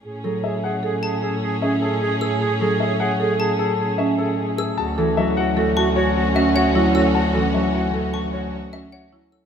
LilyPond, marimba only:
\new Staff \with { instrumentName = "Marimba" } { \time 6/4 \key a \major \tempo 4 = 152 r8 a'8 r4 a'8 r4. cis'8 r4. | r8 a'8 r4 a'8 r4. cis'8 r4. | r8 a'8 r4 a'8 fis'8 r4 cis'8 r8 e'8 cis''8 | r8 a'8 r4 a'8 fis'8 r4 cis'8 r8 e'8 cis''8 | }